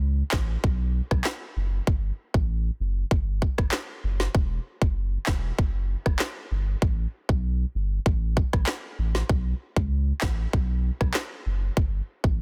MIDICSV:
0, 0, Header, 1, 3, 480
1, 0, Start_track
1, 0, Tempo, 618557
1, 1453, Time_signature, 4, 2, 24, 8
1, 9636, End_track
2, 0, Start_track
2, 0, Title_t, "Sub bass"
2, 0, Program_c, 0, 38
2, 0, Note_on_c, 0, 37, 89
2, 176, Note_off_c, 0, 37, 0
2, 254, Note_on_c, 0, 33, 94
2, 442, Note_off_c, 0, 33, 0
2, 495, Note_on_c, 0, 35, 96
2, 783, Note_off_c, 0, 35, 0
2, 863, Note_on_c, 0, 35, 95
2, 950, Note_off_c, 0, 35, 0
2, 1213, Note_on_c, 0, 30, 88
2, 1402, Note_off_c, 0, 30, 0
2, 1453, Note_on_c, 0, 31, 104
2, 1642, Note_off_c, 0, 31, 0
2, 1818, Note_on_c, 0, 33, 86
2, 2096, Note_off_c, 0, 33, 0
2, 2173, Note_on_c, 0, 30, 94
2, 2362, Note_off_c, 0, 30, 0
2, 2415, Note_on_c, 0, 31, 99
2, 2703, Note_off_c, 0, 31, 0
2, 2781, Note_on_c, 0, 31, 85
2, 2870, Note_off_c, 0, 31, 0
2, 3134, Note_on_c, 0, 30, 101
2, 3322, Note_off_c, 0, 30, 0
2, 3372, Note_on_c, 0, 28, 114
2, 3562, Note_off_c, 0, 28, 0
2, 3737, Note_on_c, 0, 30, 88
2, 4016, Note_off_c, 0, 30, 0
2, 4093, Note_on_c, 0, 28, 92
2, 4282, Note_off_c, 0, 28, 0
2, 4334, Note_on_c, 0, 30, 104
2, 4623, Note_off_c, 0, 30, 0
2, 4702, Note_on_c, 0, 30, 91
2, 4790, Note_off_c, 0, 30, 0
2, 5053, Note_on_c, 0, 31, 96
2, 5242, Note_off_c, 0, 31, 0
2, 5293, Note_on_c, 0, 33, 117
2, 5482, Note_off_c, 0, 33, 0
2, 5657, Note_on_c, 0, 35, 88
2, 5936, Note_off_c, 0, 35, 0
2, 6013, Note_on_c, 0, 31, 94
2, 6202, Note_off_c, 0, 31, 0
2, 6254, Note_on_c, 0, 33, 100
2, 6543, Note_off_c, 0, 33, 0
2, 6622, Note_on_c, 0, 33, 89
2, 6710, Note_off_c, 0, 33, 0
2, 6973, Note_on_c, 0, 33, 83
2, 7162, Note_off_c, 0, 33, 0
2, 7212, Note_on_c, 0, 35, 101
2, 7401, Note_off_c, 0, 35, 0
2, 7577, Note_on_c, 0, 37, 92
2, 7856, Note_off_c, 0, 37, 0
2, 7933, Note_on_c, 0, 33, 97
2, 8122, Note_off_c, 0, 33, 0
2, 8174, Note_on_c, 0, 35, 94
2, 8463, Note_off_c, 0, 35, 0
2, 8542, Note_on_c, 0, 35, 91
2, 8630, Note_off_c, 0, 35, 0
2, 8893, Note_on_c, 0, 30, 89
2, 9082, Note_off_c, 0, 30, 0
2, 9133, Note_on_c, 0, 31, 102
2, 9322, Note_off_c, 0, 31, 0
2, 9498, Note_on_c, 0, 33, 86
2, 9636, Note_off_c, 0, 33, 0
2, 9636, End_track
3, 0, Start_track
3, 0, Title_t, "Drums"
3, 246, Note_on_c, 9, 39, 88
3, 252, Note_on_c, 9, 38, 111
3, 254, Note_on_c, 9, 36, 90
3, 323, Note_off_c, 9, 39, 0
3, 330, Note_off_c, 9, 38, 0
3, 331, Note_off_c, 9, 36, 0
3, 495, Note_on_c, 9, 36, 97
3, 572, Note_off_c, 9, 36, 0
3, 862, Note_on_c, 9, 37, 85
3, 863, Note_on_c, 9, 36, 96
3, 939, Note_off_c, 9, 37, 0
3, 940, Note_off_c, 9, 36, 0
3, 967, Note_on_c, 9, 39, 86
3, 973, Note_on_c, 9, 38, 114
3, 1044, Note_off_c, 9, 39, 0
3, 1051, Note_off_c, 9, 38, 0
3, 1453, Note_on_c, 9, 36, 112
3, 1531, Note_off_c, 9, 36, 0
3, 1818, Note_on_c, 9, 36, 88
3, 1896, Note_off_c, 9, 36, 0
3, 2414, Note_on_c, 9, 36, 88
3, 2492, Note_off_c, 9, 36, 0
3, 2654, Note_on_c, 9, 36, 93
3, 2731, Note_off_c, 9, 36, 0
3, 2779, Note_on_c, 9, 37, 86
3, 2781, Note_on_c, 9, 36, 93
3, 2857, Note_off_c, 9, 37, 0
3, 2859, Note_off_c, 9, 36, 0
3, 2885, Note_on_c, 9, 39, 91
3, 2892, Note_on_c, 9, 38, 114
3, 2963, Note_off_c, 9, 39, 0
3, 2969, Note_off_c, 9, 38, 0
3, 3259, Note_on_c, 9, 38, 70
3, 3336, Note_off_c, 9, 38, 0
3, 3372, Note_on_c, 9, 36, 108
3, 3450, Note_off_c, 9, 36, 0
3, 3737, Note_on_c, 9, 36, 88
3, 3815, Note_off_c, 9, 36, 0
3, 4085, Note_on_c, 9, 39, 86
3, 4092, Note_on_c, 9, 38, 113
3, 4093, Note_on_c, 9, 36, 92
3, 4163, Note_off_c, 9, 39, 0
3, 4169, Note_off_c, 9, 38, 0
3, 4171, Note_off_c, 9, 36, 0
3, 4334, Note_on_c, 9, 36, 95
3, 4412, Note_off_c, 9, 36, 0
3, 4701, Note_on_c, 9, 37, 88
3, 4702, Note_on_c, 9, 36, 96
3, 4779, Note_off_c, 9, 36, 0
3, 4779, Note_off_c, 9, 37, 0
3, 4807, Note_on_c, 9, 39, 89
3, 4813, Note_on_c, 9, 38, 119
3, 4884, Note_off_c, 9, 39, 0
3, 4891, Note_off_c, 9, 38, 0
3, 5292, Note_on_c, 9, 36, 109
3, 5370, Note_off_c, 9, 36, 0
3, 5657, Note_on_c, 9, 36, 89
3, 5735, Note_off_c, 9, 36, 0
3, 6254, Note_on_c, 9, 36, 91
3, 6332, Note_off_c, 9, 36, 0
3, 6494, Note_on_c, 9, 36, 93
3, 6571, Note_off_c, 9, 36, 0
3, 6621, Note_on_c, 9, 37, 83
3, 6622, Note_on_c, 9, 36, 96
3, 6699, Note_off_c, 9, 37, 0
3, 6700, Note_off_c, 9, 36, 0
3, 6726, Note_on_c, 9, 39, 93
3, 6732, Note_on_c, 9, 38, 117
3, 6803, Note_off_c, 9, 39, 0
3, 6810, Note_off_c, 9, 38, 0
3, 7100, Note_on_c, 9, 38, 69
3, 7177, Note_off_c, 9, 38, 0
3, 7213, Note_on_c, 9, 36, 112
3, 7290, Note_off_c, 9, 36, 0
3, 7577, Note_on_c, 9, 36, 91
3, 7655, Note_off_c, 9, 36, 0
3, 7925, Note_on_c, 9, 39, 85
3, 7932, Note_on_c, 9, 38, 111
3, 7933, Note_on_c, 9, 36, 93
3, 8003, Note_off_c, 9, 39, 0
3, 8009, Note_off_c, 9, 38, 0
3, 8011, Note_off_c, 9, 36, 0
3, 8174, Note_on_c, 9, 36, 92
3, 8252, Note_off_c, 9, 36, 0
3, 8541, Note_on_c, 9, 37, 88
3, 8542, Note_on_c, 9, 36, 94
3, 8619, Note_off_c, 9, 37, 0
3, 8620, Note_off_c, 9, 36, 0
3, 8646, Note_on_c, 9, 39, 91
3, 8652, Note_on_c, 9, 38, 111
3, 8723, Note_off_c, 9, 39, 0
3, 8730, Note_off_c, 9, 38, 0
3, 9133, Note_on_c, 9, 36, 115
3, 9210, Note_off_c, 9, 36, 0
3, 9498, Note_on_c, 9, 36, 93
3, 9575, Note_off_c, 9, 36, 0
3, 9636, End_track
0, 0, End_of_file